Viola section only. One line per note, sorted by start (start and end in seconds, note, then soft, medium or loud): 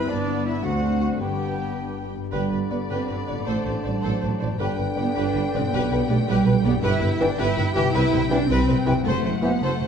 0.09 0.64 B3 medium
0.64 1.19 A3 medium
1.20 2.05 B3 soft
2.32 2.50 B4 medium
2.51 2.59 B4 soft
2.70 2.78 B4 soft
2.89 3.07 B4 medium
3.08 3.16 B4 soft
3.27 3.34 B4 medium
3.46 3.64 C5 medium
3.65 3.73 C5 soft
3.84 3.92 C5 soft
4.02 4.19 C5 medium
4.20 4.28 C5 medium
4.40 4.47 C5 soft
4.59 4.77 B4 medium
4.78 4.86 B4 medium
4.97 5.04 B4 medium
5.15 5.33 B4 medium
5.34 5.42 B4 medium
5.55 5.62 B4 medium
5.73 5.90 B4 medium
5.92 5.99 B4 medium
6.09 6.17 B4 medium
6.28 6.45 B4 medium
6.46 6.54 B4 medium
6.64 6.71 B4 medium
6.82 6.99 B4 loud
7.01 7.08 B4 medium
7.20 7.27 B4 medium
7.38 7.56 B4 loud
7.58 7.65 B4 medium
7.76 7.83 B4 medium
7.94 8.10 B4 medium
8.12 8.19 B4 medium
8.31 8.38 B4 medium
8.50 8.68 B4 loud
8.69 8.76 B4 medium
8.87 8.95 B4 medium
9.07 9.24 C5 medium
9.26 9.33 C5 medium
9.45 9.52 C5 soft
9.63 9.81 C5 medium
9.82 9.87 C5 soft